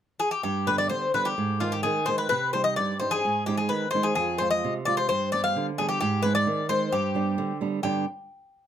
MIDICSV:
0, 0, Header, 1, 3, 480
1, 0, Start_track
1, 0, Tempo, 467654
1, 451, Time_signature, 2, 2, 24, 8
1, 4767, Tempo, 454545
1, 9018, End_track
2, 0, Start_track
2, 0, Title_t, "Bouzouki"
2, 0, Program_c, 0, 25
2, 201, Note_on_c, 0, 68, 72
2, 315, Note_off_c, 0, 68, 0
2, 319, Note_on_c, 0, 67, 69
2, 433, Note_off_c, 0, 67, 0
2, 445, Note_on_c, 0, 67, 69
2, 689, Note_on_c, 0, 71, 70
2, 697, Note_off_c, 0, 67, 0
2, 799, Note_off_c, 0, 71, 0
2, 803, Note_on_c, 0, 74, 76
2, 914, Note_off_c, 0, 74, 0
2, 918, Note_on_c, 0, 72, 71
2, 1168, Note_off_c, 0, 72, 0
2, 1172, Note_on_c, 0, 71, 72
2, 1285, Note_on_c, 0, 67, 73
2, 1298, Note_off_c, 0, 71, 0
2, 1646, Note_on_c, 0, 65, 65
2, 1664, Note_off_c, 0, 67, 0
2, 1764, Note_off_c, 0, 65, 0
2, 1765, Note_on_c, 0, 67, 69
2, 1874, Note_off_c, 0, 67, 0
2, 1878, Note_on_c, 0, 68, 73
2, 2111, Note_on_c, 0, 72, 76
2, 2137, Note_off_c, 0, 68, 0
2, 2233, Note_off_c, 0, 72, 0
2, 2237, Note_on_c, 0, 71, 69
2, 2340, Note_off_c, 0, 71, 0
2, 2352, Note_on_c, 0, 71, 81
2, 2593, Note_off_c, 0, 71, 0
2, 2597, Note_on_c, 0, 72, 74
2, 2705, Note_off_c, 0, 72, 0
2, 2709, Note_on_c, 0, 75, 78
2, 2831, Note_off_c, 0, 75, 0
2, 2835, Note_on_c, 0, 74, 81
2, 3070, Note_off_c, 0, 74, 0
2, 3074, Note_on_c, 0, 72, 70
2, 3192, Note_on_c, 0, 68, 82
2, 3198, Note_off_c, 0, 72, 0
2, 3538, Note_off_c, 0, 68, 0
2, 3554, Note_on_c, 0, 67, 72
2, 3665, Note_off_c, 0, 67, 0
2, 3669, Note_on_c, 0, 68, 65
2, 3786, Note_on_c, 0, 71, 71
2, 3793, Note_off_c, 0, 68, 0
2, 4005, Note_off_c, 0, 71, 0
2, 4009, Note_on_c, 0, 72, 75
2, 4139, Note_on_c, 0, 68, 75
2, 4155, Note_off_c, 0, 72, 0
2, 4251, Note_off_c, 0, 68, 0
2, 4263, Note_on_c, 0, 68, 75
2, 4499, Note_on_c, 0, 72, 77
2, 4523, Note_off_c, 0, 68, 0
2, 4620, Note_off_c, 0, 72, 0
2, 4624, Note_on_c, 0, 75, 77
2, 4858, Note_off_c, 0, 75, 0
2, 4989, Note_on_c, 0, 74, 89
2, 5107, Note_off_c, 0, 74, 0
2, 5111, Note_on_c, 0, 72, 81
2, 5222, Note_off_c, 0, 72, 0
2, 5235, Note_on_c, 0, 72, 87
2, 5468, Note_off_c, 0, 72, 0
2, 5480, Note_on_c, 0, 74, 81
2, 5599, Note_off_c, 0, 74, 0
2, 5604, Note_on_c, 0, 77, 89
2, 5835, Note_off_c, 0, 77, 0
2, 5969, Note_on_c, 0, 68, 76
2, 6074, Note_off_c, 0, 68, 0
2, 6078, Note_on_c, 0, 67, 77
2, 6192, Note_off_c, 0, 67, 0
2, 6204, Note_on_c, 0, 67, 84
2, 6435, Note_off_c, 0, 67, 0
2, 6436, Note_on_c, 0, 71, 82
2, 6559, Note_off_c, 0, 71, 0
2, 6566, Note_on_c, 0, 74, 81
2, 6908, Note_off_c, 0, 74, 0
2, 6929, Note_on_c, 0, 72, 84
2, 7174, Note_on_c, 0, 67, 72
2, 7181, Note_off_c, 0, 72, 0
2, 7852, Note_off_c, 0, 67, 0
2, 8132, Note_on_c, 0, 67, 67
2, 8355, Note_off_c, 0, 67, 0
2, 9018, End_track
3, 0, Start_track
3, 0, Title_t, "Nylon-string guitar"
3, 0, Program_c, 1, 24
3, 451, Note_on_c, 1, 43, 55
3, 685, Note_on_c, 1, 50, 47
3, 691, Note_on_c, 1, 55, 42
3, 695, Note_on_c, 1, 59, 49
3, 917, Note_off_c, 1, 50, 0
3, 920, Note_off_c, 1, 43, 0
3, 930, Note_on_c, 1, 50, 62
3, 1079, Note_off_c, 1, 55, 0
3, 1080, Note_off_c, 1, 59, 0
3, 1159, Note_off_c, 1, 50, 0
3, 1172, Note_on_c, 1, 50, 45
3, 1172, Note_on_c, 1, 55, 39
3, 1179, Note_on_c, 1, 59, 47
3, 1367, Note_off_c, 1, 50, 0
3, 1367, Note_off_c, 1, 55, 0
3, 1371, Note_off_c, 1, 59, 0
3, 1414, Note_on_c, 1, 44, 62
3, 1651, Note_on_c, 1, 51, 47
3, 1655, Note_on_c, 1, 56, 37
3, 1662, Note_on_c, 1, 60, 49
3, 1881, Note_off_c, 1, 51, 0
3, 1884, Note_off_c, 1, 44, 0
3, 1894, Note_on_c, 1, 51, 64
3, 2040, Note_off_c, 1, 56, 0
3, 2046, Note_off_c, 1, 60, 0
3, 2123, Note_off_c, 1, 51, 0
3, 2133, Note_on_c, 1, 51, 45
3, 2138, Note_on_c, 1, 56, 41
3, 2142, Note_on_c, 1, 60, 50
3, 2330, Note_off_c, 1, 51, 0
3, 2330, Note_off_c, 1, 56, 0
3, 2334, Note_off_c, 1, 60, 0
3, 2375, Note_on_c, 1, 48, 63
3, 2615, Note_on_c, 1, 55, 45
3, 2616, Note_on_c, 1, 60, 45
3, 2621, Note_on_c, 1, 63, 48
3, 2844, Note_off_c, 1, 48, 0
3, 2860, Note_on_c, 1, 43, 63
3, 3001, Note_off_c, 1, 55, 0
3, 3001, Note_off_c, 1, 60, 0
3, 3005, Note_off_c, 1, 63, 0
3, 3089, Note_on_c, 1, 55, 40
3, 3092, Note_on_c, 1, 60, 42
3, 3098, Note_on_c, 1, 63, 48
3, 3285, Note_off_c, 1, 55, 0
3, 3287, Note_off_c, 1, 60, 0
3, 3289, Note_off_c, 1, 63, 0
3, 3325, Note_off_c, 1, 43, 0
3, 3335, Note_on_c, 1, 44, 57
3, 3567, Note_on_c, 1, 56, 44
3, 3574, Note_on_c, 1, 60, 43
3, 3577, Note_on_c, 1, 63, 51
3, 3800, Note_off_c, 1, 44, 0
3, 3808, Note_on_c, 1, 51, 56
3, 3953, Note_off_c, 1, 56, 0
3, 3957, Note_off_c, 1, 60, 0
3, 3958, Note_off_c, 1, 63, 0
3, 4044, Note_on_c, 1, 56, 45
3, 4048, Note_on_c, 1, 60, 43
3, 4054, Note_on_c, 1, 63, 47
3, 4239, Note_off_c, 1, 56, 0
3, 4240, Note_off_c, 1, 60, 0
3, 4244, Note_off_c, 1, 63, 0
3, 4273, Note_off_c, 1, 51, 0
3, 4279, Note_on_c, 1, 41, 64
3, 4520, Note_on_c, 1, 56, 44
3, 4525, Note_on_c, 1, 60, 38
3, 4531, Note_on_c, 1, 65, 48
3, 4745, Note_off_c, 1, 41, 0
3, 4766, Note_on_c, 1, 48, 61
3, 4908, Note_off_c, 1, 56, 0
3, 4908, Note_off_c, 1, 60, 0
3, 4910, Note_off_c, 1, 65, 0
3, 5002, Note_on_c, 1, 56, 43
3, 5006, Note_on_c, 1, 60, 41
3, 5011, Note_on_c, 1, 65, 47
3, 5199, Note_off_c, 1, 56, 0
3, 5200, Note_off_c, 1, 60, 0
3, 5205, Note_off_c, 1, 65, 0
3, 5237, Note_off_c, 1, 48, 0
3, 5253, Note_on_c, 1, 43, 61
3, 5488, Note_on_c, 1, 55, 45
3, 5496, Note_on_c, 1, 59, 42
3, 5501, Note_on_c, 1, 62, 51
3, 5723, Note_off_c, 1, 43, 0
3, 5736, Note_on_c, 1, 50, 65
3, 5877, Note_off_c, 1, 55, 0
3, 5882, Note_off_c, 1, 59, 0
3, 5886, Note_off_c, 1, 62, 0
3, 5971, Note_on_c, 1, 55, 41
3, 5976, Note_on_c, 1, 59, 42
3, 5984, Note_on_c, 1, 62, 49
3, 6167, Note_off_c, 1, 55, 0
3, 6170, Note_off_c, 1, 59, 0
3, 6175, Note_off_c, 1, 62, 0
3, 6204, Note_off_c, 1, 50, 0
3, 6220, Note_on_c, 1, 44, 62
3, 6453, Note_on_c, 1, 56, 46
3, 6461, Note_on_c, 1, 60, 41
3, 6467, Note_on_c, 1, 63, 51
3, 6687, Note_off_c, 1, 44, 0
3, 6694, Note_on_c, 1, 51, 67
3, 6840, Note_off_c, 1, 56, 0
3, 6845, Note_off_c, 1, 60, 0
3, 6848, Note_off_c, 1, 63, 0
3, 6927, Note_on_c, 1, 56, 47
3, 6934, Note_on_c, 1, 60, 41
3, 6936, Note_on_c, 1, 63, 51
3, 7125, Note_off_c, 1, 56, 0
3, 7126, Note_off_c, 1, 60, 0
3, 7130, Note_off_c, 1, 63, 0
3, 7162, Note_off_c, 1, 51, 0
3, 7175, Note_on_c, 1, 43, 62
3, 7413, Note_on_c, 1, 55, 45
3, 7419, Note_on_c, 1, 62, 49
3, 7421, Note_on_c, 1, 59, 41
3, 7641, Note_off_c, 1, 43, 0
3, 7655, Note_on_c, 1, 50, 64
3, 7798, Note_off_c, 1, 55, 0
3, 7801, Note_off_c, 1, 59, 0
3, 7802, Note_off_c, 1, 62, 0
3, 7898, Note_on_c, 1, 55, 47
3, 7904, Note_on_c, 1, 59, 42
3, 7905, Note_on_c, 1, 62, 43
3, 8089, Note_off_c, 1, 55, 0
3, 8091, Note_off_c, 1, 59, 0
3, 8093, Note_off_c, 1, 62, 0
3, 8119, Note_off_c, 1, 50, 0
3, 8131, Note_on_c, 1, 43, 53
3, 8136, Note_on_c, 1, 50, 47
3, 8141, Note_on_c, 1, 55, 44
3, 8147, Note_on_c, 1, 59, 45
3, 8147, Note_on_c, 1, 62, 53
3, 8354, Note_off_c, 1, 43, 0
3, 8357, Note_off_c, 1, 50, 0
3, 8359, Note_off_c, 1, 55, 0
3, 8362, Note_off_c, 1, 59, 0
3, 8363, Note_off_c, 1, 62, 0
3, 9018, End_track
0, 0, End_of_file